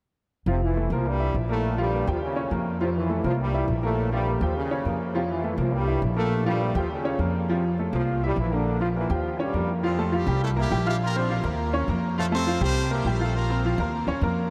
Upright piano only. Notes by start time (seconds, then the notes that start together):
0.47 F3 F4
0.77 A3 A4
0.92 A#3 A#4
1.20 E4 E5
1.49 A#3 A#4
1.78 F3 F4
1.93 A#3 A#4
2.08 G4 G5
2.36 C#4 C#5
2.52 A#3 A#4
2.81 F3 F4
3.10 A3 A4
3.24 A#3 A#4
3.54 E4 E5
3.83 A#3 A#4
4.12 F3 F4
4.27 A#3 A#4
4.42 G4 G5
4.71 C#4 C#5
4.86 A#3 A#4
5.15 F3 F4
5.44 A3 A4
5.58 A#3 A#4
5.87 E4 E5
6.17 A#3 A#4
6.46 F3 F4
6.61 A#3 A#4
6.76 G4 G5
7.05 C#4 C#5
7.20 A#3 A#4
7.49 F3 F4
7.79 A3 A4
7.93 A#3 A#4
8.23 E4 E5
8.52 A#3 A#4
8.81 F3 F4
8.96 A#3 A#4
9.10 G4 G5
9.39 C#4 C#5
9.55 A#3 A#4
9.83 F3 F4 F5
9.99 A3 A4 A5
10.12 F3 F4 F5
10.28 G3 G4 G5
10.56 A#3 A#4 A#5
10.71 G3 G4 G5
10.86 F4 F5 F6
11.16 C4 C5 C6
11.30 F3 F4 F5
11.45 A#3 A#4 A#5
11.73 C#4 C#5 C#6
11.89 A#3 A#4 A#5
12.18 F3 F4 F5
12.32 A3 A4 A5
12.47 F3 F4 F5
12.61 G3 G4 G5
12.91 A#3 A#4 A#5
13.06 G3 G4 G5
13.21 F4 F5 F6
13.50 C4 C5 C6
13.65 F3 F4 F5
13.80 A#3 A#4 A#5
14.08 C#4 C#5 C#6
14.23 A#3 A#4 A#5